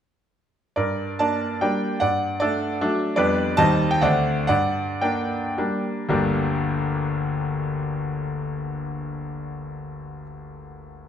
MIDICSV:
0, 0, Header, 1, 2, 480
1, 0, Start_track
1, 0, Key_signature, -2, "minor"
1, 0, Tempo, 423430
1, 889, Time_signature, 3, 2, 24, 8
1, 1843, Tempo, 389105
1, 3763, Tempo, 421053
1, 4723, Tempo, 466926
1, 5203, Tempo, 545951
1, 6163, Tempo, 496689
1, 8083, Tempo, 526778
1, 9043, Tempo, 487805
1, 11464, End_track
2, 0, Start_track
2, 0, Title_t, "Grand piano"
2, 0, Program_c, 0, 0
2, 862, Note_on_c, 0, 74, 66
2, 871, Note_on_c, 0, 43, 44
2, 876, Note_on_c, 0, 70, 43
2, 1105, Control_c, 0, 64, 127
2, 1333, Note_off_c, 0, 70, 0
2, 1346, Note_off_c, 0, 74, 0
2, 1350, Note_off_c, 0, 43, 0
2, 1351, Note_on_c, 0, 81, 84
2, 1358, Note_on_c, 0, 58, 38
2, 1361, Note_on_c, 0, 62, 42
2, 1363, Note_on_c, 0, 74, 61
2, 1789, Note_off_c, 0, 58, 0
2, 1791, Note_off_c, 0, 62, 0
2, 1803, Note_off_c, 0, 74, 0
2, 1828, Note_on_c, 0, 79, 59
2, 1831, Note_off_c, 0, 81, 0
2, 1834, Note_on_c, 0, 55, 46
2, 1834, Note_on_c, 0, 58, 41
2, 1836, Note_on_c, 0, 74, 49
2, 1838, Note_on_c, 0, 62, 44
2, 1859, Control_c, 0, 64, 0
2, 2268, Note_off_c, 0, 55, 0
2, 2268, Note_off_c, 0, 58, 0
2, 2271, Note_off_c, 0, 62, 0
2, 2284, Note_off_c, 0, 74, 0
2, 2304, Note_on_c, 0, 78, 74
2, 2313, Note_off_c, 0, 79, 0
2, 2320, Note_on_c, 0, 74, 60
2, 2321, Note_on_c, 0, 43, 49
2, 2545, Control_c, 0, 64, 127
2, 2778, Note_off_c, 0, 74, 0
2, 2797, Note_on_c, 0, 74, 77
2, 2804, Note_off_c, 0, 43, 0
2, 2811, Note_off_c, 0, 78, 0
2, 2816, Note_on_c, 0, 57, 48
2, 2819, Note_on_c, 0, 62, 50
2, 2821, Note_on_c, 0, 69, 60
2, 3250, Note_off_c, 0, 57, 0
2, 3252, Note_off_c, 0, 62, 0
2, 3308, Note_on_c, 0, 54, 57
2, 3308, Note_on_c, 0, 62, 61
2, 3311, Note_on_c, 0, 57, 53
2, 3316, Control_c, 0, 64, 0
2, 3480, Note_off_c, 0, 69, 0
2, 3518, Note_off_c, 0, 74, 0
2, 3719, Note_off_c, 0, 54, 0
2, 3720, Note_off_c, 0, 62, 0
2, 3721, Note_off_c, 0, 57, 0
2, 3737, Note_on_c, 0, 74, 81
2, 3750, Note_on_c, 0, 41, 66
2, 3750, Note_on_c, 0, 55, 48
2, 3759, Note_on_c, 0, 71, 66
2, 3760, Note_on_c, 0, 59, 51
2, 3767, Note_on_c, 0, 62, 46
2, 3978, Control_c, 0, 64, 127
2, 4175, Note_off_c, 0, 55, 0
2, 4179, Note_off_c, 0, 59, 0
2, 4182, Note_off_c, 0, 62, 0
2, 4192, Note_off_c, 0, 71, 0
2, 4205, Note_on_c, 0, 81, 113
2, 4206, Note_off_c, 0, 41, 0
2, 4214, Note_off_c, 0, 74, 0
2, 4214, Note_on_c, 0, 55, 53
2, 4219, Note_on_c, 0, 39, 73
2, 4220, Note_on_c, 0, 75, 84
2, 4224, Note_on_c, 0, 60, 48
2, 4240, Control_c, 0, 64, 0
2, 4430, Control_c, 0, 64, 127
2, 4567, Note_off_c, 0, 75, 0
2, 4586, Note_off_c, 0, 81, 0
2, 4590, Note_on_c, 0, 79, 77
2, 4670, Note_off_c, 0, 55, 0
2, 4675, Note_off_c, 0, 60, 0
2, 4703, Note_off_c, 0, 39, 0
2, 4711, Note_on_c, 0, 78, 77
2, 4719, Note_off_c, 0, 79, 0
2, 4719, Note_on_c, 0, 38, 65
2, 4723, Note_on_c, 0, 57, 47
2, 4726, Note_on_c, 0, 74, 68
2, 4730, Note_on_c, 0, 60, 42
2, 4733, Note_on_c, 0, 62, 43
2, 4737, Control_c, 0, 64, 0
2, 4952, Control_c, 0, 64, 127
2, 5161, Note_off_c, 0, 57, 0
2, 5165, Note_off_c, 0, 60, 0
2, 5167, Note_off_c, 0, 62, 0
2, 5168, Note_off_c, 0, 78, 0
2, 5170, Note_off_c, 0, 74, 0
2, 5184, Note_on_c, 0, 78, 85
2, 5186, Note_off_c, 0, 38, 0
2, 5199, Note_on_c, 0, 74, 70
2, 5202, Note_on_c, 0, 43, 61
2, 5212, Control_c, 0, 64, 0
2, 5454, Control_c, 0, 64, 127
2, 5639, Note_off_c, 0, 74, 0
2, 5659, Note_off_c, 0, 43, 0
2, 5663, Note_on_c, 0, 79, 63
2, 5665, Note_off_c, 0, 78, 0
2, 5668, Note_on_c, 0, 58, 44
2, 5670, Note_on_c, 0, 74, 51
2, 5676, Note_on_c, 0, 62, 50
2, 6125, Note_off_c, 0, 58, 0
2, 6128, Note_off_c, 0, 62, 0
2, 6159, Note_on_c, 0, 55, 43
2, 6162, Note_on_c, 0, 58, 44
2, 6164, Note_on_c, 0, 62, 52
2, 6172, Control_c, 0, 64, 0
2, 6376, Note_off_c, 0, 74, 0
2, 6411, Note_off_c, 0, 79, 0
2, 6614, Note_off_c, 0, 55, 0
2, 6616, Note_off_c, 0, 58, 0
2, 6617, Note_off_c, 0, 62, 0
2, 6650, Note_on_c, 0, 31, 68
2, 6654, Note_on_c, 0, 55, 54
2, 6657, Note_on_c, 0, 38, 56
2, 6660, Note_on_c, 0, 58, 52
2, 6665, Note_on_c, 0, 62, 55
2, 6665, Note_on_c, 0, 67, 50
2, 6866, Control_c, 0, 64, 127
2, 10606, Note_off_c, 0, 31, 0
2, 10611, Note_off_c, 0, 55, 0
2, 10614, Note_off_c, 0, 38, 0
2, 10616, Note_off_c, 0, 58, 0
2, 10621, Note_off_c, 0, 62, 0
2, 10622, Note_off_c, 0, 67, 0
2, 11464, End_track
0, 0, End_of_file